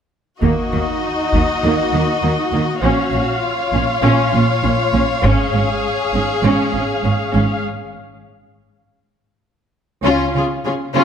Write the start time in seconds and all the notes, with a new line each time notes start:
0.41 D#2 D#3 A#3 D#4 F#4 D#5, taiko
0.73 D#2 D#3 A#3
1.32 D#2 D#3 A#3, taiko
1.63 D#2 D#3 A#3
1.92 D#2 D#3 A#3
2.23 D#2 D#3 A#3
2.52 D#2 D#3 A#3
2.82 A#1 A#2 C#4 C#5 F5
3.13 A#1 A#2 C#4
3.41 F4
3.73 A#1 A#2 C#4
4.03 A#1 A#2 C#4
4.33 A#1 A#2 C#4
4.63 A#1 A#2 C#4
4.92 A#1 A#2 C#4
5.23 G#1 G#2 C#4 G#4, taiko
5.53 G#1 G#2 C#4
6.13 G#1 G#2 C#4
6.43 G#1 G#2 C#4
6.73 G#1 G#2 C#4
7.04 G#1 G#2 C#4
7.34 G#1 G#2 C#4
10.04 C#2 C#3 C#4 F4
10.35 C#3 C#4 F4 G#4
10.65 C#3 C#4 F4 G#4 C#5
10.93 C#3 C#4 F4